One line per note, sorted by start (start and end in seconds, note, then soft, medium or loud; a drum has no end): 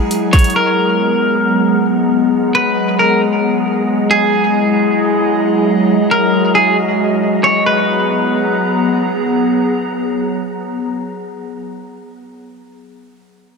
0.00 4.07 F#3 medium
0.00 0.51 G#3 medium
0.00 0.52 E4 medium
0.00 0.52 G#4 medium
0.00 4.07 G#4 medium
0.00 0.52 D#5 medium
0.00 0.51 F#5 medium
0.00 0.51 A#5 medium
0.11 closed hi-hat medium
0.33 0.54 C#5 medium
0.33 kick medium
0.33 closed hi-hat medium
0.39 closed hi-hat medium
0.44 closed hi-hat soft
0.50 closed hi-hat soft
0.55 7.62 G#3 medium
0.55 4.07 B3 medium
0.55 7.62 G#4 medium
0.55 1.85 A#4 loud
0.55 7.62 F#5 medium
0.55 7.62 A#5 medium
2.55 2.97 B4 medium
2.99 3.21 A#4 medium
4.11 7.63 F#3 medium
4.11 7.63 E4 medium
4.11 5.87 E4 medium
4.11 5.40 G#4 loud
4.11 7.63 G#4 medium
4.11 7.63 D#5 medium
5.89 7.65 F#4 medium
6.11 6.53 A#4 medium
6.55 6.76 G#4 medium
7.44 7.65 C#5 medium
7.66 11.44 F#3 medium
7.66 11.44 B3 medium
7.66 11.44 G#4 medium
7.66 8.96 B4 medium
7.66 11.44 F#5 medium
7.66 11.44 A#5 medium